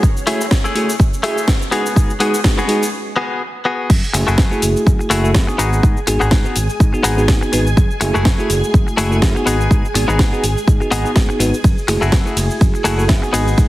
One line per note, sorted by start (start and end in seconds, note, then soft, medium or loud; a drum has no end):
0.00 0.14 F#2 loud
0.00 2.93 C#4 medium
0.00 2.93 C#5 medium
0.00 kick loud
0.00 shaker medium
0.17 shaker soft
0.26 0.38 F#1 loud
0.26 0.41 A3 medium
0.26 0.46 A3 loud
0.26 0.41 E4 medium
0.26 0.46 E4 loud
0.26 0.41 F#4 medium
0.26 0.41 G#4 loud
0.26 0.46 G#4 loud
0.26 open hi-hat loud
0.40 0.49 F#1 medium
0.40 shaker medium
0.51 kick loud
0.51 snare loud
0.51 shaker medium
0.64 0.94 A3 medium
0.64 0.94 E4 medium
0.64 0.95 G#4 loud
0.64 shaker soft
0.75 0.86 F#1 medium
0.75 0.89 A3 medium
0.75 0.89 E4 medium
0.75 0.89 F#4 medium
0.75 0.89 G#4 loud
0.75 open hi-hat medium
0.89 shaker medium
1.00 1.10 F#2 medium
1.00 kick loud
1.00 shaker medium
1.14 shaker soft
1.23 1.35 F#1 loud
1.23 1.48 A3 loud
1.23 1.37 A3 medium
1.23 1.38 E4 medium
1.23 1.48 E4 loud
1.23 1.38 F#4 medium
1.23 1.38 G#4 loud
1.23 1.48 G#4 loud
1.23 open hi-hat loud
1.37 muted fingered electric bass stroke soft
1.37 shaker medium
1.48 1.68 F#2 medium
1.48 kick loud
1.48 snare loud
1.48 shaker medium
1.62 shaker soft
1.71 1.86 G#3 medium
1.71 2.12 B3 medium
1.71 1.86 D#4 medium
1.71 2.12 F#4 medium
1.71 1.86 F#4 medium
1.71 1.86 G#4 loud
1.71 2.12 G#4 loud
1.71 open hi-hat medium
1.86 shaker medium
1.95 2.07 G#2 medium
1.95 2.10 G#3 medium
1.95 2.10 D#4 medium
1.95 2.10 F#4 medium
1.95 2.10 G#4 loud
1.95 kick loud
1.95 shaker medium
2.10 shaker soft
2.20 2.34 G#3 medium
2.20 2.39 B3 loud
2.20 2.34 D#4 medium
2.20 2.34 F#4 medium
2.20 2.39 F#4 loud
2.20 2.34 G#4 loud
2.20 2.40 G#4 loud
2.20 open hi-hat loud
2.34 shaker medium
2.44 2.58 G#3 medium
2.44 2.58 D#4 medium
2.44 2.59 F#4 medium
2.44 2.59 G#4 loud
2.44 kick loud
2.44 snare loud
2.44 shaker medium
2.58 2.87 B3 medium
2.58 2.88 F#4 medium
2.58 2.88 G#4 loud
2.58 shaker soft
2.68 2.82 G#3 medium
2.68 2.82 D#4 medium
2.68 2.82 F#4 medium
2.68 2.83 G#4 loud
2.68 open hi-hat medium
2.83 shaker medium
3.16 3.41 B3 loud
3.16 3.41 F#4 loud
3.16 3.42 G#4 loud
3.65 3.90 B3 medium
3.65 3.90 F#4 medium
3.65 3.90 G#4 loud
3.90 4.01 F#2 loud
3.90 11.63 G#4 medium
3.90 11.63 G#5 medium
3.90 kick loud
3.90 crash loud
3.90 shaker soft
4.04 shaker soft
4.13 4.25 F#1 loud
4.13 4.28 A3 medium
4.13 4.28 E4 medium
4.13 4.28 F#4 medium
4.13 4.28 G#4 loud
4.13 muted clean electric guitar stroke loud
4.13 open hi-hat loud
4.13 shaker medium
4.27 4.36 F#1 loud
4.27 4.62 A3 medium
4.27 4.62 E4 medium
4.27 4.63 F#4 medium
4.27 4.63 G#4 medium
4.27 shaker soft
4.38 4.49 F#2 medium
4.38 kick loud
4.38 snare loud
4.38 shaker soft
4.50 5.08 A3 medium
4.50 5.08 E4 medium
4.50 5.08 F#4 medium
4.50 5.08 G#4 loud
4.50 shaker soft
4.62 4.73 F#1 medium
4.62 open hi-hat medium
4.62 shaker medium
4.76 shaker soft
4.87 4.98 F#2 medium
4.87 kick loud
4.87 shaker soft
4.99 muted clean electric guitar stroke soft
4.99 shaker soft
5.10 5.37 F#1 loud
5.10 5.29 A3 loud
5.10 5.22 A3 medium
5.10 5.22 E4 medium
5.10 5.29 E4 loud
5.10 5.30 F#4 loud
5.10 5.22 F#4 medium
5.10 5.22 G#4 medium
5.10 5.30 G#4 loud
5.10 open hi-hat loud
5.10 shaker medium
5.23 5.32 A3 medium
5.23 5.32 E4 medium
5.23 5.32 F#4 medium
5.23 5.32 A4 loud
5.23 shaker soft
5.34 5.46 F#2 medium
5.34 5.46 A3 medium
5.34 5.46 F#4 medium
5.34 kick loud
5.34 snare loud
5.34 shaker soft
5.47 5.68 B3 medium
5.47 5.68 D#4 medium
5.47 5.68 F#4 medium
5.47 5.68 G#4 loud
5.47 muted clean electric guitar stroke medium
5.47 shaker soft
5.58 5.79 G#1 medium
5.58 5.99 B3 medium
5.58 5.99 D#4 medium
5.58 5.99 F#4 medium
5.58 5.99 G#4 medium
5.58 open hi-hat medium
5.58 shaker medium
5.73 shaker soft
5.83 5.94 G#2 loud
5.83 kick loud
5.83 shaker soft
5.97 shaker soft
6.07 6.18 G#1 loud
6.07 6.21 B3 medium
6.07 6.21 D#4 medium
6.07 6.21 F#4 medium
6.07 6.22 G#4 medium
6.07 muted clean electric guitar stroke loud
6.07 open hi-hat loud
6.07 shaker medium
6.20 6.30 G#1 medium
6.20 6.56 B3 medium
6.20 6.56 D#4 medium
6.20 6.56 F#4 medium
6.20 6.56 G#4 loud
6.20 shaker soft
6.31 6.43 G#2 medium
6.31 kick loud
6.31 snare loud
6.31 shaker soft
6.45 6.57 B3 medium
6.45 6.57 D#4 medium
6.45 6.57 F#4 medium
6.45 6.57 G#4 medium
6.45 shaker soft
6.56 6.67 G#1 medium
6.56 open hi-hat loud
6.56 shaker medium
6.70 shaker soft
6.80 6.91 G#2 medium
6.80 kick loud
6.80 shaker soft
6.93 7.14 B3 medium
6.93 7.14 D#4 medium
6.93 7.15 F#4 medium
6.93 7.15 G#4 medium
6.93 muted clean electric guitar stroke soft
6.93 shaker soft
7.03 7.30 G#1 medium
7.03 7.23 B3 loud
7.03 7.23 D#4 loud
7.03 7.23 F#4 loud
7.03 7.23 G#4 loud
7.03 open hi-hat loud
7.03 shaker medium
7.17 7.50 B3 medium
7.17 7.50 D#4 medium
7.17 7.50 F#4 medium
7.17 7.50 G#4 loud
7.17 shaker soft
7.28 kick loud
7.28 snare loud
7.28 shaker soft
7.41 muted clean electric guitar stroke medium
7.41 shaker soft
7.52 7.73 G#1 medium
7.52 7.66 B3 medium
7.52 7.67 D#4 medium
7.52 7.67 F#4 medium
7.52 7.67 B4 loud
7.52 muted clean electric guitar stroke soft
7.52 open hi-hat loud
7.52 shaker medium
7.67 shaker soft
7.77 7.88 F#2 medium
7.77 kick loud
7.77 shaker soft
7.91 shaker soft
8.01 8.12 F#1 loud
8.01 8.15 A3 medium
8.01 8.15 E4 medium
8.01 8.15 F#4 medium
8.01 8.15 G#4 loud
8.01 muted clean electric guitar stroke loud
8.01 open hi-hat loud
8.01 shaker medium
8.14 8.24 F#1 medium
8.14 8.49 A3 medium
8.14 8.50 E4 medium
8.14 8.50 F#4 medium
8.14 8.50 G#4 loud
8.14 shaker soft
8.25 8.36 F#2 medium
8.25 kick loud
8.25 snare loud
8.25 shaker soft
8.38 8.95 A3 loud
8.38 8.95 E4 medium
8.38 8.95 F#4 medium
8.38 8.96 G#4 loud
8.38 shaker soft
8.50 8.61 F#1 medium
8.50 open hi-hat medium
8.50 shaker medium
8.64 shaker soft
8.74 8.85 F#2 loud
8.74 kick loud
8.74 shaker soft
8.87 muted clean electric guitar stroke soft
8.87 shaker soft
8.97 9.24 F#1 loud
8.97 9.09 A3 medium
8.97 9.16 A3 loud
8.97 9.09 E4 medium
8.97 9.17 E4 loud
8.97 9.09 F#4 medium
8.97 9.17 F#4 loud
8.97 9.09 G#4 medium
8.97 9.17 G#4 loud
8.97 open hi-hat loud
8.97 shaker medium
9.11 9.19 A3 medium
9.11 9.20 E4 medium
9.11 9.20 F#4 medium
9.11 9.20 A4 loud
9.11 shaker soft
9.21 9.33 F#2 medium
9.21 9.33 A3 medium
9.21 9.33 E4 medium
9.21 9.34 F#4 medium
9.21 kick loud
9.21 snare loud
9.21 shaker soft
9.35 9.55 B3 medium
9.35 9.55 D#4 medium
9.35 9.56 F#4 medium
9.35 9.56 G#4 loud
9.35 muted clean electric guitar stroke medium
9.35 shaker soft
9.46 9.67 G#1 medium
9.46 9.86 B3 medium
9.46 9.86 D#4 medium
9.46 9.86 F#4 medium
9.46 9.87 G#4 loud
9.46 open hi-hat loud
9.46 shaker medium
9.61 shaker soft
9.71 9.82 G#2 loud
9.71 kick loud
9.71 shaker soft
9.85 shaker soft
9.94 10.06 G#1 loud
9.94 10.09 B3 medium
9.94 10.09 D#4 medium
9.94 10.09 F#4 medium
9.94 10.09 G#4 medium
9.94 muted clean electric guitar stroke loud
9.94 open hi-hat loud
9.94 shaker medium
10.08 10.17 G#1 medium
10.08 10.43 B3 medium
10.08 10.43 D#4 medium
10.08 10.44 F#4 medium
10.08 10.44 G#4 medium
10.08 shaker soft
10.19 10.30 G#2 medium
10.19 kick loud
10.19 snare loud
10.19 shaker soft
10.32 10.44 B3 medium
10.32 10.44 D#4 medium
10.32 10.44 F#4 medium
10.32 10.44 G#4 loud
10.32 shaker soft
10.43 10.54 G#1 medium
10.43 open hi-hat loud
10.43 shaker medium
10.58 shaker soft
10.67 10.78 G#2 medium
10.67 kick loud
10.67 shaker soft
10.80 11.02 B3 medium
10.80 11.02 D#4 medium
10.80 11.02 F#4 medium
10.80 11.02 G#4 loud
10.80 muted clean electric guitar stroke soft
10.80 shaker soft
10.91 11.02 G#1 loud
10.91 11.10 B3 loud
10.91 11.10 D#4 loud
10.91 11.11 F#4 loud
10.91 11.11 G#4 loud
10.91 open hi-hat loud
10.91 shaker medium
11.04 11.37 B3 medium
11.04 11.37 D#4 medium
11.04 11.37 F#4 medium
11.04 11.37 G#4 loud
11.04 muted fingered electric bass stroke soft
11.04 shaker soft
11.16 11.27 G#2 medium
11.16 kick loud
11.16 snare loud
11.16 shaker soft
11.29 muted clean electric guitar stroke medium
11.29 shaker soft
11.39 11.51 G#1 loud
11.39 11.54 B3 medium
11.39 11.54 D#4 medium
11.39 11.54 F#4 medium
11.39 11.54 B4 loud
11.39 muted clean electric guitar stroke soft
11.39 open hi-hat loud
11.39 shaker medium
11.54 shaker soft
11.64 11.75 F#2 loud
11.64 13.68 G#4 medium
11.64 13.68 G#5 medium
11.64 kick loud
11.64 ride medium
11.64 shaker soft
11.78 shaker soft
11.88 11.99 F#1 loud
11.88 12.02 A3 medium
11.88 12.02 E4 medium
11.88 12.02 F#4 medium
11.88 12.02 G#4 loud
11.88 muted clean electric guitar stroke loud
11.88 open hi-hat loud
11.88 ride medium
11.88 shaker medium
12.01 12.10 F#1 medium
12.01 12.36 A3 medium
12.01 12.37 E4 medium
12.01 12.37 F#4 medium
12.01 12.37 G#4 medium
12.01 shaker soft
12.12 12.23 F#2 medium
12.12 kick loud
12.12 snare loud
12.12 ride medium
12.12 shaker soft
12.25 12.82 A3 medium
12.25 12.82 E4 medium
12.25 12.83 F#4 medium
12.25 12.83 G#4 loud
12.25 shaker soft
12.36 12.47 F#1 medium
12.36 open hi-hat medium
12.36 ride medium
12.36 shaker medium
12.51 shaker soft
12.61 12.72 F#2 loud
12.61 kick loud
12.61 ride medium
12.61 shaker soft
12.74 muted clean electric guitar stroke soft
12.74 shaker soft
12.84 13.11 F#1 loud
12.84 13.03 A3 loud
12.84 12.96 A3 medium
12.84 12.96 E4 medium
12.84 13.04 E4 medium
12.84 12.96 F#4 medium
12.84 13.04 F#4 loud
12.84 12.97 G#4 medium
12.84 13.04 G#4 loud
12.84 open hi-hat loud
12.84 ride medium
12.84 shaker medium
12.98 13.06 A3 medium
12.98 13.06 E4 medium
12.98 13.07 F#4 medium
12.98 13.07 A4 loud
12.98 shaker soft
13.08 13.20 F#2 medium
13.08 13.20 A3 medium
13.08 13.20 E4 medium
13.08 13.20 F#4 medium
13.08 13.21 G#4 loud
13.08 kick loud
13.08 snare loud
13.08 ride medium
13.08 shaker soft
13.22 13.42 B3 medium
13.22 13.42 D#4 medium
13.22 13.43 F#4 medium
13.22 13.43 G#4 loud
13.22 muted clean electric guitar stroke medium
13.22 shaker soft
13.33 13.54 G#1 medium
13.33 13.68 B3 loud
13.33 13.68 D#4 medium
13.33 13.68 F#4 medium
13.33 13.68 G#4 loud
13.33 open hi-hat medium
13.33 ride medium
13.33 shaker medium
13.48 shaker soft
13.58 13.68 G#2 loud
13.58 kick loud
13.58 ride medium
13.58 shaker soft